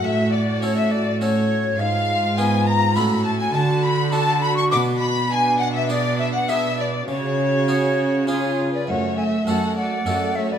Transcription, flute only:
\new Staff \with { instrumentName = "Flute" } { \time 3/4 \key fis \minor \tempo 4 = 102 e''8 d''8 cis''16 e''16 d''8 cis''4 | f''4 aes''8 ais''8 b''8 a''16 gis''16 | a''8 b''8 a''8 b''16 cis'''16 d'''8 b''8 | gis''8 fis''16 e''16 d''8 e''16 fis''16 e''8 d''8 |
cis''2 cis''8. d''16 | fis''8 gis''8 a''8 fis''4 e''16 d''16 | }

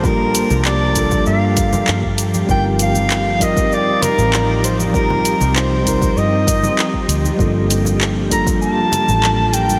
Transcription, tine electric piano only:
\new Staff \with { instrumentName = "Tine electric piano" } { \time 4/4 \key g \minor \tempo 4 = 98 <g bes d' f' g'>4. <g bes d' f' a'>2~ <g bes d' f' a'>8 | <g c' ees' f' bes'>4. <g c' ees' f' bes'>8 r2 | <g c' ees' f' g'>4. <g c' ees' f' bes'>2~ <g c' ees' f' bes'>8 | <g bes d' f' a'>4. <g bes d' f' a'>8 r2 | }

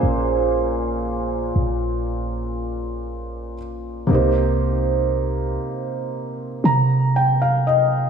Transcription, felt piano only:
\new Staff \with { instrumentName = "Felt piano" } { \time 4/4 \key bes \dorian \tempo 4 = 59 << { r1 | r2 r8 bes''8 g''16 f''16 ees''8 | } \\ { <bes, bes des' aes' c''>2.~ <bes, bes des' aes' c''>8 r8 | <c bes ees' g' c''>1 | } >> }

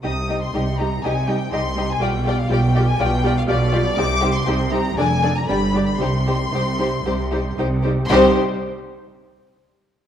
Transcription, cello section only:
\new Staff \with { instrumentName = "Cello section" } { \clef bass \time 4/4 \key c \minor \tempo 4 = 119 c4 c4 c4 c4 | b,4 b,4 b,4 b,4 | c4 c4 f,4 g,4 | c4 c4 c4 c4 |
c8 r2. r8 | }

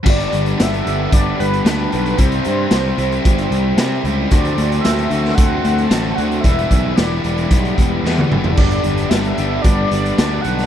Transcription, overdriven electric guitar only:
\new Staff \with { instrumentName = "Overdriven electric guitar" } { \time 4/4 \key g \major \tempo 4 = 113 <g, d g b d'>4 <d g b d'>8 <g b d'>4. <g, d g b d'>8 <g b d'>8 | <c g c' e'>4 <c g c' e'>8 <g c' e'>4. <c g c' e'>8 <g c' e'>8 | <d a c' fis'>4 <d a c' fis'>8 <a c' fis'>4. <d a c' fis'>8 <a c' fis'>8 | <e g b e'>4 <e g b e'>8 <g b e'>4. <e g b e'>8 <g b e'>8 |
<g, d g b d'>4 <d g b d'>8 <g b d'>4. <g, d g b d'>8 <g b d'>8 | }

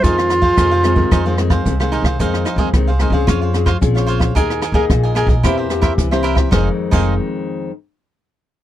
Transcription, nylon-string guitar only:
\new Staff \with { instrumentName = "Nylon-string guitar" } { \clef bass \time 4/4 \key f \minor \tempo 4 = 111 << { <ees aes c'>8. r16 <ees aes c'>8 <ees aes c'>16 <ees aes c'>8 <ees aes c'>16 <ees aes c'>8 <ees aes c'>16 <ees aes c'>8. | <ees aes c'>8 r16 <ees aes c'>16 <ees aes c'>16 r16 <ees aes c'>16 <c' des' aes'>8. <c' des' aes'>16 r16 <c' des' aes'>4 | <bes ees' aes'>8 r16 <bes ees' aes'>8. <bes ees' aes'>16 r16 <bes c' g'>8 <bes c' g'>8. <bes c' g'>8. | <f, ees aes c'>16 r8 <f, ees aes c'>8 r2 r8. | } \\ { f,4 c4 f,4 c4 | f,4 c4 f4 f4 | ees4 bes,4 e4 e4 | r1 | } >> }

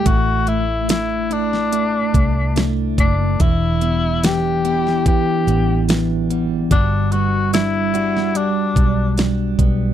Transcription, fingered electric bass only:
\new Staff \with { instrumentName = "Fingered electric bass" } { \clef bass \time 4/4 \key e \minor \tempo 4 = 72 a,,2~ a,,8 c,4 fis,,8 | e,,2~ e,,8 a,,4. | g,,2~ g,,8 b,,4 b,,8 | }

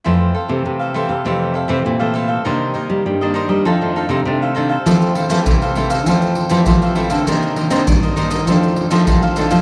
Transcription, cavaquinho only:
\new Staff \with { instrumentName = "Cavaquinho" } { \time 4/4 \key f \major \tempo 4 = 100 <e' a' c'' f''>8 <a' c'' f''>8. <a' c'' f''>16 <e' a' c'' f''>16 <a' c'' f''>16 <e' a' c'' f''>8 <e' a' c'' f''>16 <e' a' c'' f''>16 r16 <a' c'' f''>16 <e' a' c'' f''>16 <a' c'' f''>16 | <ees' bes' c'' ees''>8 <ees' bes' c'' ees''>8. <bes' c'' ees''>16 <ees' bes' c'' ees''>16 <bes' c'' ees''>16 <ees' a' c'' f''>8 <ees' a' c'' f''>16 <ees' a' c'' f''>16 r16 <a' c'' f''>16 <ees' a' c'' f''>16 <a' c'' f''>16 | <e' a' c'' f''>8 <e' a' c'' f''>16 <e' a' c'' f''>16 r16 <a' c'' f''>16 <e' a' c'' f''>16 <a' c'' f''>16 <a' c'' f''>8. <e' a' c'' f''>16 <e' a' c'' f''>16 <a' c'' f''>16 <e' a' c'' f''>16 <a' c'' f''>16 | <ees' bes' c'' ees''>8 <ees' bes' c'' ees''>16 <ees' bes' c'' ees''>16 r16 <bes' c'' ees''>16 <ees' bes' c'' ees''>16 <bes' c'' ees''>16 <ees' a' c'' f''>8. <ees' a' c'' f''>16 <ees' a' c'' f''>16 <a' c'' f''>16 <ees' a' c'' f''>16 <a' c'' f''>16 | }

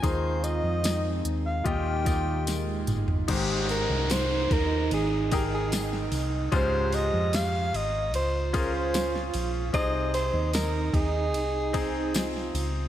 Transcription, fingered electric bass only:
\new Staff \with { instrumentName = "Fingered electric bass" } { \clef bass \time 4/4 \key aes \major \tempo 4 = 74 ees,8. f,8. ees,8 ees,4. g,,8 | aes,,8. c,8. ees,8 aes,,4. c,8 | des,8. f,8. aes,,8 des,4. bes,,8 | c,8. ees,8. ees,8 c,4. des,8 | }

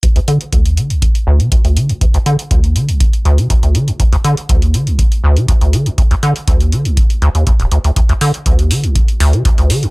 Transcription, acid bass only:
\new Staff \with { instrumentName = "Acid bass" } { \clef bass \time 4/4 \key c \dorian \tempo 4 = 121 d,16 d,16 d16 r16 d,16 ees,16 d16 c,16 d,16 r16 d,16 c16 d,16 d,16 d16 d,16 | d,16 d,16 d16 r16 d,16 ees,16 d16 c,16 d,16 r16 d,16 c16 d,16 d,16 d16 d,16 | d,16 d,16 d16 r16 d,16 ees,16 d16 c,16 d,16 r16 d,16 c16 d,16 d,16 d16 d,16 | d,16 d,16 d16 r16 d,16 ees,16 d16 c,16 d,16 r16 d,16 ees,16 r16 d,,16 d,16 d,16 |
d,16 d,16 d16 r16 d,16 ees,16 d16 c,16 d,16 r16 d,16 c16 d,16 d,16 d16 d,16 | }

